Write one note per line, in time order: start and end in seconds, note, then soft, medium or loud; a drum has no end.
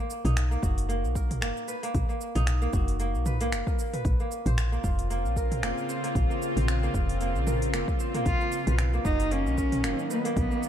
0.00 0.51 A#3 medium
0.00 0.32 A#4 medium
0.00 0.76 C5 medium
0.10 cabasa medium
0.25 0.57 B1 medium
0.25 1.87 D#4 loud
0.25 mid tom medium
0.25 open hi-hat medium
0.25 cabasa soft
0.37 finger snap loud
0.37 open hi-hat soft
0.37 cabasa soft
0.51 0.88 A#3 medium
0.51 cabasa soft
0.62 1.05 F#1 medium
0.62 2.08 F#4 medium
0.62 kick loud
0.62 cabasa medium
0.78 open hi-hat medium
0.78 cabasa soft
0.89 1.41 A#3 medium
0.89 open hi-hat soft
0.89 cabasa soft
1.04 1.44 B1 medium
1.04 cabasa soft
1.15 1.74 A#4 medium
1.15 kick medium
1.15 cabasa medium
1.31 mid tom medium
1.31 open hi-hat medium
1.31 cabasa soft
1.41 1.52 F#1 loud
1.41 1.74 A#3 medium
1.41 finger snap loud
1.41 open hi-hat soft
1.41 cabasa soft
1.57 cabasa soft
1.68 1.89 B4 medium
1.68 cabasa medium
1.83 2.08 A#3 loud
1.83 open hi-hat soft
1.83 cabasa soft
1.94 2.05 B1 loud
1.94 kick loud
1.94 open hi-hat soft
1.94 cabasa soft
2.09 2.61 A#3 medium
2.09 cabasa soft
2.21 cabasa medium
2.35 2.68 B1 medium
2.35 3.98 D#4 loud
2.35 mid tom medium
2.35 open hi-hat medium
2.35 cabasa soft
2.47 finger snap loud
2.47 open hi-hat soft
2.47 cabasa soft
2.62 2.99 A#3 medium
2.62 cabasa soft
2.73 3.16 F#1 medium
2.73 4.20 F#4 medium
2.73 kick loud
2.73 cabasa medium
2.88 open hi-hat medium
2.88 cabasa soft
3.00 3.32 A#3 medium
3.00 open hi-hat soft
3.00 cabasa soft
3.15 3.54 B1 medium
3.15 cabasa soft
3.26 3.47 B4 medium
3.26 mid tom medium
3.26 cabasa medium
3.41 3.99 A#3 loud
3.41 open hi-hat medium
3.41 cabasa soft
3.52 3.62 F#1 loud
3.52 finger snap loud
3.52 open hi-hat soft
3.52 cabasa soft
3.67 3.99 A#4 medium
3.67 kick loud
3.67 cabasa soft
3.79 cabasa medium
3.93 4.26 B4 medium
3.93 mid tom medium
3.93 open hi-hat medium
3.93 cabasa soft
4.05 4.15 A#1 medium
4.05 8.22 C#3 medium
4.05 8.22 C4 medium
4.05 8.22 F4 medium
4.05 kick loud
4.05 open hi-hat soft
4.05 cabasa soft
4.20 4.72 A#3 medium
4.20 cabasa soft
4.32 cabasa medium
4.46 4.78 A#1 medium
4.46 5.65 C5 medium
4.46 mid tom medium
4.46 open hi-hat soft
4.46 cabasa soft
4.58 finger snap loud
4.58 open hi-hat soft
4.58 cabasa soft
4.72 5.10 A#3 medium
4.72 cabasa soft
4.84 5.26 F1 medium
4.84 6.35 F4 medium
4.84 kick loud
4.84 cabasa medium
4.99 open hi-hat medium
4.99 cabasa soft
5.10 5.63 A#3 medium
5.10 open hi-hat soft
5.10 cabasa soft
5.25 5.64 A#1 medium
5.25 cabasa soft
5.36 6.64 A#4 medium
5.36 kick medium
5.36 cabasa medium
5.52 mid tom medium
5.52 open hi-hat medium
5.52 cabasa soft
5.63 5.73 F1 medium
5.63 6.03 A#3 medium
5.63 finger snap loud
5.63 open hi-hat soft
5.63 cabasa soft
5.78 cabasa soft
5.89 6.56 C5 medium
5.89 cabasa medium
6.04 6.30 A#3 loud
6.04 open hi-hat soft
6.04 cabasa soft
6.15 6.25 A#1 loud
6.15 kick loud
6.15 open hi-hat soft
6.15 cabasa soft
6.30 6.83 A#3 medium
6.30 cabasa soft
6.42 cabasa medium
6.56 6.89 A#1 medium
6.56 7.75 C5 medium
6.56 mid tom medium
6.56 open hi-hat medium
6.56 cabasa soft
6.68 finger snap loud
6.68 open hi-hat soft
6.68 cabasa soft
6.83 7.21 A#3 medium
6.83 cabasa soft
6.94 7.37 F1 medium
6.94 8.46 F4 medium
6.94 kick medium
6.94 cabasa medium
7.09 open hi-hat medium
7.09 cabasa soft
7.21 7.73 A#3 medium
7.21 open hi-hat soft
7.21 cabasa soft
7.35 7.75 A#1 medium
7.35 cabasa soft
7.47 8.73 A#4 medium
7.47 mid tom medium
7.47 cabasa medium
7.62 open hi-hat medium
7.62 cabasa soft
7.73 7.83 F1 loud
7.73 8.14 A#3 medium
7.73 finger snap loud
7.73 open hi-hat soft
7.73 cabasa soft
7.88 kick loud
7.88 cabasa soft
8.00 8.73 C5 medium
8.00 cabasa medium
8.14 8.41 A#3 loud
8.14 mid tom medium
8.14 open hi-hat medium
8.14 cabasa soft
8.25 8.36 B1 loud
8.25 10.69 D#3 medium
8.25 10.35 F#3 medium
8.25 8.75 F4 loud
8.25 kick loud
8.25 open hi-hat soft
8.25 cabasa soft
8.41 8.73 A#3 medium
8.41 cabasa soft
8.52 cabasa medium
8.67 8.99 B1 medium
8.67 9.00 B4 medium
8.67 mid tom medium
8.67 open hi-hat medium
8.67 cabasa soft
8.79 finger snap loud
8.79 open hi-hat soft
8.79 cabasa soft
8.93 9.31 A#3 medium
8.93 cabasa soft
9.05 9.47 F#1 medium
9.05 9.33 D#4 loud
9.05 10.51 F#4 medium
9.05 kick loud
9.05 cabasa medium
9.20 open hi-hat medium
9.20 cabasa soft
9.31 9.83 A#3 medium
9.31 10.11 C#4 loud
9.31 open hi-hat soft
9.31 cabasa soft
9.46 9.86 B1 medium
9.46 cabasa soft
9.57 10.16 A#4 medium
9.57 kick medium
9.57 cabasa medium
9.72 mid tom medium
9.72 open hi-hat medium
9.72 cabasa soft
9.84 9.94 F#1 loud
9.84 10.16 A#3 medium
9.84 finger snap loud
9.84 open hi-hat soft
9.84 cabasa soft
9.99 cabasa soft
10.10 10.35 B3 medium
10.10 10.31 B4 medium
10.10 cabasa medium
10.25 10.51 A#3 loud
10.25 open hi-hat medium
10.25 cabasa soft
10.37 10.47 B1 loud
10.37 10.66 B3 medium
10.37 10.69 G#4 medium
10.37 kick loud
10.37 open hi-hat soft
10.37 cabasa soft
10.51 10.69 A#3 medium
10.51 cabasa soft
10.63 10.69 A#3 medium
10.63 cabasa medium